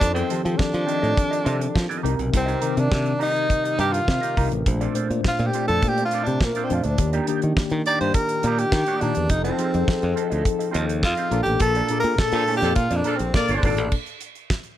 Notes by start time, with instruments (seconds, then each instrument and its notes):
0.00 fingered electric bass F2, french horn section D#3 F3 C4 A4, tine electric piano F3 C4 D#4, tenor saxophone D4, muted clean electric guitar stroke, kick, closed hi-hat
0.14 tenor saxophone C4, clean electric guitar C4 F4 A4 D#5, closed hi-hat
0.29 tine electric piano D#3 F3 C4 G4, clean electric guitar C4 F4 A4 D#5, closed hi-hat
0.43 fingered electric bass F3, tenor saxophone C4, muted clean electric guitar stroke, closed hi-hat
0.58 tenor saxophone D4, muted clean electric guitar stroke, muted fingered electric bass stroke, kick, snare
0.74 fingered electric bass F3, muted clean electric guitar stroke, closed hi-hat
0.86 clean electric guitar C4 F4 A4 D#5, closed hi-hat
1.02 fingered electric bass A2, clean electric guitar C4 F4 A4 D#5, closed hi-hat
1.17 kick, closed hi-hat
1.31 clean electric guitar C4 F4 A4 D#5, closed hi-hat
1.44 fingered electric bass C3, clean electric guitar C4 F4 A4 D#5, closed hi-hat
1.59 muted clean electric guitar stroke, closed hi-hat
1.75 fingered electric bass F3, muted clean electric guitar stroke, kick, snare
1.89 clean electric guitar C4 F4 A4 D#5, closed hi-hat
2.03 fingered electric bass C2, french horn section A#2 C3 G3, tine electric piano C3 C4 D#4 A#4, clean electric guitar D#4 G4 A#4 D#5, closed hi-hat
2.17 fingered electric bass B1, muted clean electric guitar stroke, closed hi-hat
2.31 fingered electric bass C2, muted clean electric guitar stroke, kick, closed hi-hat
2.37 tenor saxophone C4
2.46 clean electric guitar D#4 G4 A#4 D#5, closed hi-hat
2.61 tine electric piano C3 D#3 C4 A#4, clean electric guitar D#4 G4 A#4 D#5, closed hi-hat
2.76 fingered electric bass C3, tenor saxophone D4, muted clean electric guitar stroke, closed hi-hat
2.91 fingered electric bass C3, muted clean electric guitar stroke, kick, snare
3.06 muted clean electric guitar stroke, closed hi-hat
3.19 clean electric guitar D#4 G4 A#4 D#5, tenor saxophone D#4, open hi-hat
3.34 clean electric guitar D#4 G4 A#4 D#5, closed hi-hat
3.50 kick, closed hi-hat
3.64 clean electric guitar D#4 G4 A#4 D#5, closed hi-hat
3.79 fingered electric bass G2, clean electric guitar D#4 G4 A#4 D#5, tenor saxophone G4, closed hi-hat
3.93 tenor saxophone F4, muted clean electric guitar stroke, closed hi-hat
4.07 fingered electric bass C3, muted clean electric guitar stroke, kick, snare
4.21 clean electric guitar D#4 G4 A#4 D#5, closed hi-hat
4.36 fingered electric bass C2, tine electric piano C3 C4 D#4 A#4, clean electric guitar D#4 G4 A#4 D#5, kick, open hi-hat
4.51 fingered electric bass A1, muted clean electric guitar stroke, closed hi-hat
4.66 fingered electric bass A#1, tine electric piano A#2 A3 D4 C5, french horn section A3 D4, muted clean electric guitar stroke, kick, closed hi-hat
4.81 clean electric guitar C4 F4 A4 D5, closed hi-hat
4.94 tine electric piano A#2 A3 D4 C5, clean electric guitar C4 F4 A4 D5, closed hi-hat
5.10 fingered electric bass A#2, muted clean electric guitar stroke, closed hi-hat
5.24 muted clean electric guitar stroke, kick, snare
5.28 tenor saxophone F4
5.39 fingered electric bass A#2, muted clean electric guitar stroke, closed hi-hat
5.47 tenor saxophone G4
5.53 clean electric guitar C4 F4 A4 D5, closed hi-hat
5.68 fingered electric bass F2, clean electric guitar C4 F4 A4 D5, tenor saxophone A4, closed hi-hat
5.82 fingered electric bass A#2, muted clean electric guitar stroke, kick, closed hi-hat
5.88 tenor saxophone G4
5.97 clean electric guitar C4 F4 A4 D5, closed hi-hat
6.05 tenor saxophone F4
6.11 clean electric guitar C4 F4 A4 D5, closed hi-hat
6.23 fingered electric bass C3, tenor saxophone D4, closed hi-hat
6.28 muted clean electric guitar stroke
6.41 fingered electric bass A#2, tenor saxophone A#3, muted clean electric guitar stroke, kick, snare
6.55 clean electric guitar C4 F4 A4 D5, closed hi-hat
6.64 tenor saxophone C4
6.69 fingered electric bass F2, tine electric piano A#2 A3 D4 C5, clean electric guitar C4 F4 A4 D5, closed hi-hat
6.74 tenor saxophone F4
6.83 fingered electric bass D2, tenor saxophone D4, closed hi-hat
6.98 fingered electric bass D#2, tine electric piano D#3 G4, french horn section D#3 G4, muted clean electric guitar stroke, kick, closed hi-hat
7.13 clean electric guitar A#3 D#4 G4 D5, closed hi-hat
7.27 tine electric piano D#3 A#3 D4 G4, clean electric guitar A#3 D#4 G4 D5, closed hi-hat
7.42 fingered electric bass D#3, closed hi-hat
7.57 muted clean electric guitar stroke, kick, snare
7.70 fingered electric bass D#3, muted clean electric guitar stroke, closed hi-hat
7.86 clean electric guitar A#3 D#4 G4 D5, tenor saxophone D5, closed hi-hat
8.01 fingered electric bass G2, clean electric guitar A#3 D#4 G4 D5, tenor saxophone C5, closed hi-hat
8.14 tenor saxophone A#4, kick, closed hi-hat
8.29 muted clean electric guitar stroke, closed hi-hat
8.43 fingered electric bass A#2, clean electric guitar A#3 D#4 G4, closed hi-hat
8.47 clean electric guitar D5
8.58 tenor saxophone G4, muted clean electric guitar stroke, closed hi-hat
8.72 fingered electric bass D#3, muted clean electric guitar stroke, kick, snare
8.86 clean electric guitar A#3 D#4 G4 D5, closed hi-hat
9.01 fingered electric bass A#2, tine electric piano D#3 A#3 D4 G4, clean electric guitar A#3 D#4 G4 D5, tenor saxophone D4, closed hi-hat
9.15 fingered electric bass E2, muted clean electric guitar stroke, closed hi-hat
9.29 fingered electric bass F1, tine electric piano F3 C4 D#4, french horn section F3 C4 D#4 A4, tenor saxophone D#4, muted clean electric guitar stroke, kick, closed hi-hat
9.44 tenor saxophone C4, clean electric guitar C4 F4 A4 D#5, closed hi-hat
9.58 tine electric piano F3 C4 D#4 G#4, clean electric guitar C4 F4 A4 D#5, closed hi-hat
9.66 tine electric piano A4
9.74 fingered electric bass F2, muted clean electric guitar stroke, closed hi-hat
9.88 muted clean electric guitar stroke, muted fingered electric bass stroke, kick, snare
10.00 fingered electric bass F2, muted clean electric guitar stroke, closed hi-hat
10.16 clean electric guitar C4 F4 A4 D#5, closed hi-hat
10.30 fingered electric bass D2, clean electric guitar C4 F4 A4 D#5, closed hi-hat
10.45 muted clean electric guitar stroke, kick, closed hi-hat
10.59 clean electric guitar C4 F4 A4 D#5, closed hi-hat
10.71 fingered electric bass D#2, clean electric guitar C4 F4 A4 D#5, closed hi-hat
10.87 muted clean electric guitar stroke, closed hi-hat
11.02 fingered electric bass F2, tenor saxophone F4, muted clean electric guitar stroke, kick, snare
11.17 clean electric guitar C4 F4 A4 D#5, closed hi-hat
11.31 fingered electric bass A#1, tine electric piano A#2 A#3 D4 A4, clean electric guitar A#3 F4 A4 D5, french horn section A#3 D4 A4, closed hi-hat
11.43 fingered electric bass A1, tenor saxophone G4, closed hi-hat
11.60 fingered electric bass A#1, tenor saxophone A4, muted clean electric guitar stroke, kick, closed hi-hat
11.75 clean electric guitar A#3 F4 A4 D5, closed hi-hat
11.88 tine electric piano A#2 A#3 D4 G#4, clean electric guitar A#3 F4 A4 D5, closed hi-hat
11.97 tine electric piano A4, tenor saxophone A#4
12.03 fingered electric bass A#2, closed hi-hat
12.18 tenor saxophone A4, muted clean electric guitar stroke, kick, snare
12.32 fingered electric bass A#2, horn section F3 D4 A4, muted clean electric guitar stroke, closed hi-hat
12.47 clean electric guitar A#3 F4 A4 D5, open hi-hat
12.57 tenor saxophone G4
12.62 fingered electric bass F2, horn section F3 D4 A4, clean electric guitar A#3 F4 A4 D5, snare, closed hi-hat
12.75 fingered electric bass A#2, tenor saxophone F4, muted clean electric guitar stroke, kick, closed hi-hat
12.90 fingered electric bass F2, clean electric guitar A#3 F4 A4 D5, closed hi-hat
12.96 tenor saxophone D4
13.04 horn section F3 D4 A4, clean electric guitar A#3 F4 A4 D5, closed hi-hat
13.16 fingered electric bass A#1, tenor saxophone C4, muted clean electric guitar stroke, closed hi-hat
13.34 tenor saxophone A#3, horn section A#3 A4 D5, muted clean electric guitar stroke, kick, snare
13.48 fingered electric bass G1, clean electric guitar A#3 F4 A4 D5, closed hi-hat
13.55 tenor saxophone D4
13.63 fingered electric bass G#1, tine electric piano A#2 A#3 D4 A4, clean electric guitar A#3 F4 A4 D5, kick, open hi-hat
13.77 fingered electric bass A1, muted clean electric guitar stroke, closed hi-hat
13.92 kick, crash
14.06 closed hi-hat
14.21 closed hi-hat
14.35 closed hi-hat
14.50 kick, snare
14.63 closed hi-hat